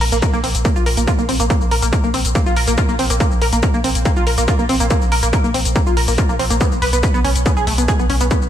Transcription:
0.01 sub bass A#1, synth arpeggio sound A#4, open hi-hat
0.12 sub bass A#1, synth arpeggio sound A#3, closed hi-hat, shaker
0.22 kick, closed hi-hat, shaker
0.33 sub bass A#1, synth arpeggio sound A#3, shaker
0.44 sub bass A#1, synth arpeggio sound C4, open hi-hat
0.55 sub bass A#1, closed hi-hat, shaker
0.65 synth arpeggio sound A#3, kick, closed hi-hat, shaker
0.76 sub bass A#1, synth arpeggio sound F4, shaker
0.86 sub bass A#1, synth arpeggio sound A#4, open hi-hat
0.97 sub bass A#1, synth arpeggio sound A#3, closed hi-hat, shaker
1.07 synth arpeggio sound F4, kick, closed hi-hat, shaker
1.18 sub bass A#1, synth arpeggio sound A#3, shaker
1.29 sub bass A#1, synth arpeggio sound C4, open hi-hat
1.40 sub bass A#1, synth arpeggio sound A#3, closed hi-hat, shaker
1.50 synth arpeggio sound A#3, kick, closed hi-hat, shaker
1.61 sub bass A#1, shaker
1.71 sub bass A#1, synth arpeggio sound A#4, open hi-hat
1.82 sub bass A#1, synth arpeggio sound A#3, closed hi-hat, shaker
1.93 kick, closed hi-hat, shaker
2.04 sub bass A#1, synth arpeggio sound A#3, shaker
2.14 sub bass A#1, synth arpeggio sound C4, open hi-hat
2.25 sub bass A#1, closed hi-hat, shaker
2.35 synth arpeggio sound A#3, kick, closed hi-hat, shaker
2.46 sub bass A#1, synth arpeggio sound F4, shaker
2.56 sub bass A#1, synth arpeggio sound A#4, open hi-hat
2.67 sub bass A#1, synth arpeggio sound A#3, closed hi-hat, shaker
2.78 synth arpeggio sound F4, kick, closed hi-hat, shaker
2.89 sub bass A#1, synth arpeggio sound A#3, shaker
2.99 sub bass A#1, synth arpeggio sound C4, open hi-hat
3.10 sub bass A#1, synth arpeggio sound A#3, closed hi-hat, shaker
3.20 synth arpeggio sound A#3, kick, closed hi-hat, shaker
3.31 sub bass A#1, shaker
3.42 sub bass A#1, synth arpeggio sound A#4, open hi-hat
3.53 sub bass A#1, synth arpeggio sound A#3, closed hi-hat, shaker
3.63 kick, closed hi-hat, shaker
3.74 sub bass A#1, synth arpeggio sound A#3, shaker
3.84 sub bass A#1, synth arpeggio sound C4, open hi-hat
3.95 sub bass A#1, closed hi-hat, shaker
4.05 synth arpeggio sound A#3, kick, closed hi-hat, shaker
4.16 sub bass A#1, synth arpeggio sound F4, shaker
4.27 sub bass A#1, synth arpeggio sound A#4, open hi-hat
4.38 sub bass A#1, synth arpeggio sound A#3, closed hi-hat, shaker
4.48 synth arpeggio sound F4, kick, closed hi-hat, shaker
4.59 sub bass A#1, synth arpeggio sound A#3, shaker
4.69 sub bass A#1, synth arpeggio sound C4, open hi-hat
4.80 sub bass A#1, synth arpeggio sound A#3, closed hi-hat, shaker
4.90 synth arpeggio sound A#3, kick, closed hi-hat, shaker
5.02 sub bass A#1, shaker
5.12 sub bass A#1, synth arpeggio sound A#4, open hi-hat
5.23 sub bass A#1, synth arpeggio sound A#3, closed hi-hat, shaker
5.33 kick, closed hi-hat, shaker
5.44 sub bass A#1, synth arpeggio sound A#3, shaker
5.54 sub bass A#1, synth arpeggio sound C4, open hi-hat
5.65 sub bass A#1, closed hi-hat, shaker
5.76 synth arpeggio sound A#3, kick, closed hi-hat, shaker
5.87 sub bass A#1, synth arpeggio sound F4, shaker
5.97 sub bass A#1, synth arpeggio sound A#4, open hi-hat
6.08 sub bass A#1, synth arpeggio sound A#3, open hi-hat, shaker
6.18 synth arpeggio sound F4, kick, closed hi-hat, shaker
6.29 sub bass A#1, synth arpeggio sound A#3, shaker
6.39 sub bass A#1, synth arpeggio sound C4, open hi-hat
6.50 sub bass A#1, synth arpeggio sound A#3, closed hi-hat, shaker
6.61 synth arpeggio sound B3, kick, closed hi-hat, shaker
6.72 sub bass B1, shaker
6.82 sub bass B1, synth arpeggio sound B4, open hi-hat
6.93 sub bass B1, synth arpeggio sound B3, closed hi-hat, shaker
7.03 kick, closed hi-hat, shaker
7.14 sub bass B1, synth arpeggio sound B3, shaker
7.24 sub bass B1, synth arpeggio sound C#4, open hi-hat
7.36 sub bass B1, closed hi-hat, shaker
7.46 synth arpeggio sound B3, kick, closed hi-hat, shaker
7.57 sub bass B1, synth arpeggio sound G#4, shaker
7.67 sub bass B1, synth arpeggio sound A3, open hi-hat
7.78 sub bass B1, synth arpeggio sound B3, closed hi-hat, shaker
7.88 synth arpeggio sound G#4, kick, closed hi-hat, shaker
7.99 sub bass B1, synth arpeggio sound B3, shaker
8.10 sub bass B1, synth arpeggio sound C#4, open hi-hat
8.21 sub bass B1, synth arpeggio sound B3, closed hi-hat, shaker
8.31 synth arpeggio sound B3, kick, closed hi-hat, shaker
8.42 sub bass B1, shaker

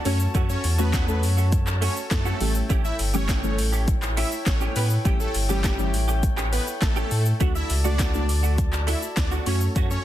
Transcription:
Already playing: brass ensemble F#4 A4 A5
0.05 sub bass F#2, clean electric guitar A3 C#4 F#4, synth stab A3 C#4 F#4, supersaw synth C#4 C#5, brass ensemble C#5, open hi-hat, shaker
0.20 muted clean electric guitar stroke, shaker
0.34 sub bass F#2, clean electric guitar A3 C#4 F#4, kick, closed hi-hat, shaker
0.49 supersaw synth C#4 C#5, muted clean electric guitar stroke, shaker
0.64 sub bass E2, muted clean electric guitar stroke, open hi-hat, shaker
0.78 synth stab A3 C#4 F#4, clean electric guitar A3 C#4 F#4, supersaw synth B3 B4, shaker
0.93 clean electric guitar A3 C#4 F#4, kick, snare, clap, closed hi-hat, shaker
1.08 synth stab A3 C#4 A4, muted clean electric guitar stroke, shaker
1.23 sub bass F#2, muted clean electric guitar stroke, open hi-hat, shaker
1.37 clean electric guitar A3 C#4 F#4, shaker
1.52 muted clean electric guitar stroke, kick, closed hi-hat, shaker
1.67 muted clean electric guitar stroke, clap, shaker
1.81 clean electric guitar A3 C#4 F#4, supersaw synth C#4 C#5, open hi-hat, shaker
1.96 muted clean electric guitar stroke, shaker
2.11 sub bass F#2, supersaw synth A3 A4, muted clean electric guitar stroke, kick, snare, clap, closed hi-hat, shaker
2.25 clean electric guitar A3 C#4 F#4, shaker
2.40 sub bass A1, synth stab E3 G3 A3 C#4 G4, brass ensemble E4 C#5 G5, muted clean electric guitar stroke, open hi-hat, shaker
2.55 muted clean electric guitar stroke, shaker
2.69 sub bass A1, clean electric guitar A3 C#4 G4, kick, closed hi-hat, shaker
2.84 supersaw synth E4 E5, muted clean electric guitar stroke, shaker
2.99 sub bass G1, muted clean electric guitar stroke, open hi-hat, shaker
3.14 synth stab E3 G3 A3 C#4 G4, clean electric guitar A3 C#4 G4, supersaw synth C#4 C#5, shaker
3.28 clean electric guitar A3 C#4 G4, kick, snare, clap, closed hi-hat, shaker
3.43 synth stab E3 G3 A3 C#4 A4, muted clean electric guitar stroke, shaker
3.58 sub bass A1, muted clean electric guitar stroke, open hi-hat, shaker
3.73 clean electric guitar A3 C#4 G4, shaker
3.87 muted clean electric guitar stroke, kick, closed hi-hat, shaker
4.02 muted clean electric guitar stroke, clap, shaker
4.17 clean electric guitar A3 C#4 G4, supersaw synth E4 E5, open hi-hat, shaker
4.32 muted clean electric guitar stroke, shaker
4.46 sub bass A1, supersaw synth C#4 C#5, muted clean electric guitar stroke, kick, snare, clap, closed hi-hat, shaker
4.61 clean electric guitar A3 C#4 G4, shaker
4.75 sub bass A2, clean electric guitar A3 C#4 G4, supersaw synth B3 B4, open hi-hat, shaker
4.90 muted clean electric guitar stroke, shaker
5.05 sub bass A1, synth stab E3 G3 A3 C#4 G4, clean electric guitar A3 C#4 G4, kick, closed hi-hat, shaker
5.20 supersaw synth A3 A4, muted clean electric guitar stroke, shaker
5.34 sub bass G1, muted clean electric guitar stroke, open hi-hat, shaker
5.49 synth stab E3 G3 A3 C#4 G4, supersaw synth G3 G4, clean electric guitar A3 C#4 G4, shaker
5.64 clean electric guitar A3 C#4 G4, kick, snare, clap, closed hi-hat, shaker
5.79 synth stab E3 G3 A3 C#4 G4, muted clean electric guitar stroke, shaker
5.93 sub bass A1, muted clean electric guitar stroke, open hi-hat, shaker
6.08 clean electric guitar A3 C#4 G4, shaker
6.23 muted clean electric guitar stroke, kick, closed hi-hat, shaker
6.37 clean electric guitar A3 C#4 G4, clap, shaker
6.52 supersaw synth B3 B4, muted clean electric guitar stroke, open hi-hat, shaker
6.67 muted clean electric guitar stroke, shaker
6.81 sub bass A1, supersaw synth A3 A4, muted clean electric guitar stroke, kick, snare, clap, closed hi-hat, shaker
6.96 clean electric guitar A3 C#4 G4, shaker
7.11 sub bass A2, muted clean electric guitar stroke, open hi-hat, shaker
7.26 muted clean electric guitar stroke, shaker
7.40 sub bass D2, clean electric guitar A3 D4 F#4, synth stab A3 D4 F#4, brass ensemble F#4 A4 D5 A5, kick, closed hi-hat, shaker
7.55 supersaw synth E4 E5, muted clean electric guitar stroke, shaker
7.70 sub bass C#2, muted clean electric guitar stroke, open hi-hat, shaker
7.84 synth stab A3 D4 F#4, clean electric guitar A3 D4 F#4, supersaw synth D4 D5, shaker
7.99 clean electric guitar A3 D4 F#4, kick, snare, clap, closed hi-hat, shaker
8.14 synth stab A3 D4 F#4, muted clean electric guitar stroke, shaker
8.29 sub bass D2, muted clean electric guitar stroke, open hi-hat, shaker
8.43 clean electric guitar A3 D4 F#4, shaker
8.58 muted clean electric guitar stroke, kick, closed hi-hat, shaker
8.73 muted clean electric guitar stroke, clap, shaker
8.87 clean electric guitar A3 D4 F#4, supersaw synth E4 E5, clap, open hi-hat, shaker
9.02 muted clean electric guitar stroke, shaker
9.17 sub bass D2, supersaw synth D4 D5, muted clean electric guitar stroke, kick, snare, clap, closed hi-hat, shaker
9.31 clean electric guitar A3 D4 F#4, shaker
9.46 sub bass F#2, clean electric guitar A3 C#4 F#4, synth stab A3 C#4 F#4, supersaw synth C#4 C#5, brass ensemble C#5 A5, open hi-hat, shaker
9.61 muted clean electric guitar stroke, shaker
9.75 sub bass F#2, clean electric guitar A3 C#4 F#4, kick, closed hi-hat, shaker
9.90 supersaw synth C#4 C#5, muted clean electric guitar stroke, shaker

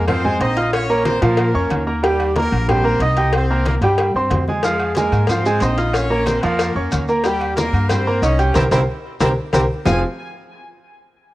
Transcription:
Already playing: upright bass F2
0.08 grand piano F3 F4 F5, horn section C4 C5, cowbell, high conga, low conga, low agogo
0.24 grand piano G#3 G#4 G#5, high conga, low conga
0.40 upright bass A#1, grand piano C4 C5 C6, horn section D#4 D#5, cowbell, high conga, low agogo
0.57 grand piano F4 F5 F6, cowbell, high conga
0.73 horn section C#4 C#5, cowbell, high conga, low agogo
0.89 grand piano A#3 A#4 A#5, high conga
1.05 horn section C4 C5, cowbell, high conga, low agogo
1.22 upright bass A#2, grand piano F3 F4 F5, horn section A#3 A#4, cowbell, low agogo
1.37 cowbell, low agogo
1.54 upright bass F2, grand piano C#4 C#5 C#6, high conga
1.70 upright bass D#2, cowbell, high conga, low agogo
1.87 grand piano A#3 A#4 A#5
2.03 grand piano G3 G4 G5, horn section G3 G4, cowbell, low agogo
2.20 high conga, low agogo
2.36 grand piano A#3 A#4 A#5, horn section A#3 A#4, cowbell, high conga
2.52 upright bass A#1, low agogo
2.68 grand piano G3 G4 G5, horn section C4 C5, cowbell, high conga, low conga, low agogo
2.84 grand piano A#3 A#4 A#5, high conga
2.99 upright bass C2, grand piano D#4 D#5 D#6, horn section D#4 D#5, cowbell, low agogo
3.17 grand piano G4 G5 G6, cowbell, high conga
3.33 horn section C4 C5, cowbell, high conga, low agogo
3.50 grand piano A#3 A#4 A#5, high conga
3.65 horn section A#3 A#4, cowbell, high conga, low agogo
3.81 upright bass G2, grand piano G3 G4 G5, horn section G3 G4, cowbell, low agogo
3.98 cowbell, high conga, low agogo
4.14 upright bass G2, grand piano C4 C5 C6, high conga
4.30 upright bass F2, cowbell, high conga, low timbale, low agogo
4.48 grand piano G#3 G#4 G#5, high conga
4.63 grand piano F3 F4 F5, horn section G#3 G#4, cowbell, low agogo, maracas
4.80 high conga, low agogo
4.95 grand piano G#3 G#4 G#5, horn section A#4, cowbell, high conga, maracas
4.99 horn section A#3
5.12 upright bass G#2, low agogo, maracas
5.27 grand piano F3 F4 F5, horn section C4 C5, cowbell, high conga, low conga, low agogo, maracas
5.45 grand piano G#3 G#4 G#5, high conga, maracas
5.60 upright bass A#1, grand piano C4 C5 C6, horn section D#4 D#5, cowbell, high conga, low timbale, low agogo, maracas
5.78 grand piano F4 F5 F6, cowbell, high conga, maracas
5.93 horn section C#4 C#5, cowbell, high conga, low agogo, maracas
6.10 grand piano A#3 A#4 A#5, high conga
6.26 horn section C4 C5, cowbell, high conga, low agogo, maracas
6.43 upright bass F2, grand piano F3 F4 F5, horn section A#3 A#4, cowbell, low agogo, maracas
6.59 cowbell, high conga, low agogo, maracas
6.75 upright bass F2, grand piano C#4 C#5 C#6, high conga
6.92 upright bass D#2, cowbell, high conga, low agogo, maracas
7.08 grand piano A#3 A#4 A#5, maracas
7.24 grand piano G3 G4 G5, horn section G3 G4, cowbell, high conga, low agogo, maracas
7.41 high conga, low agogo
7.56 grand piano A#3 A#4 A#5, horn section A#3 A#4, cowbell, high conga, maracas
7.73 upright bass G2, low agogo, maracas
7.89 grand piano G3 G4 G5, horn section C4 C5, cowbell, high conga, low conga, low agogo, maracas
8.06 grand piano A#3 A#4 A#5, high conga
8.22 upright bass C2, horn section C#4 C#5, grand piano D#4 D#5 D#6, cowbell, high conga, low agogo, maracas
8.39 grand piano G4 G5 G6, cowbell, high conga, maracas
8.54 upright bass C2, horn section C4 E4 G4, grand piano G4 A#4 C5, cowbell, high conga, high timbale, maracas
8.71 upright bass C2, horn section C4 E4 G4, grand piano G4 A#4 C5, cowbell, high conga, high timbale, maracas
9.20 upright bass C2, horn section C4 E4 G4, grand piano G4 A#4 C5, cowbell, high conga, high timbale, maracas
9.53 upright bass C2, horn section C4 E4 G4, grand piano G4 A#4 C5, cowbell, high conga, high timbale, maracas
9.85 upright bass F1, grand piano F3 C4 F4 G#4 C5 F5, horn section G#5, low bongo, low conga, low timbale, maracas

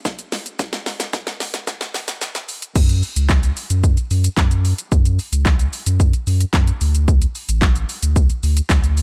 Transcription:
0.05 kick, snare, shaker
0.19 closed hi-hat, shaker
0.32 snare, open hi-hat, shaker
0.46 closed hi-hat, shaker
0.59 kick, snare, shaker
0.73 snare, closed hi-hat, shaker
0.86 snare, open hi-hat, shaker
1.00 snare, closed hi-hat, shaker
1.13 kick, snare, shaker
1.27 snare, closed hi-hat, shaker
1.40 snare, open hi-hat, shaker
1.54 snare, closed hi-hat, shaker
1.67 kick, snare, shaker
1.81 snare, closed hi-hat, shaker
1.94 snare, open hi-hat, shaker
2.08 snare, closed hi-hat, shaker
2.21 snare, shaker
2.35 snare, closed hi-hat, shaker
2.49 open hi-hat, shaker
2.62 closed hi-hat, shaker
2.76 sub bass F#2, kick, crash, shaker
2.89 closed hi-hat, shaker
3.03 open hi-hat, shaker
3.16 sub bass C#2, closed hi-hat, shaker
3.29 kick, snare, clap, shaker
3.43 closed hi-hat, shaker
3.57 open hi-hat, shaker
3.70 sub bass F#2, closed hi-hat, shaker
3.84 kick, shaker
3.97 closed hi-hat, shaker
4.11 sub bass F#2, open hi-hat, shaker
4.24 closed hi-hat, shaker
4.37 sub bass F#2, kick, snare, clap, shaker
4.51 closed hi-hat, shaker
4.65 open hi-hat, shaker
4.78 closed hi-hat, shaker
4.92 sub bass F#2, kick, shaker
5.05 closed hi-hat, shaker
5.19 open hi-hat, shaker
5.32 sub bass C#2, closed hi-hat, shaker
5.45 kick, snare, clap, shaker
5.59 closed hi-hat, shaker
5.73 open hi-hat, shaker
5.86 sub bass F#2, closed hi-hat, shaker
6.00 kick, shaker
6.13 closed hi-hat, shaker
6.27 sub bass F#2, open hi-hat, shaker
6.41 closed hi-hat, shaker
6.53 sub bass F#2, kick, snare, clap, shaker
6.67 closed hi-hat, shaker
6.81 sub bass D2, open hi-hat, shaker
6.95 closed hi-hat, shaker
7.08 kick, shaker
7.22 closed hi-hat, shaker
7.35 open hi-hat, shaker
7.49 sub bass A1, closed hi-hat, shaker
7.62 kick, snare, clap, shaker
7.76 closed hi-hat, shaker
7.89 open hi-hat, shaker
8.03 sub bass D2, closed hi-hat, shaker
8.16 kick, shaker
8.30 closed hi-hat, shaker
8.43 sub bass D2, open hi-hat, shaker
8.57 closed hi-hat, shaker
8.69 sub bass D2, kick, snare, clap, shaker
8.84 closed hi-hat, shaker
8.97 open hi-hat, shaker

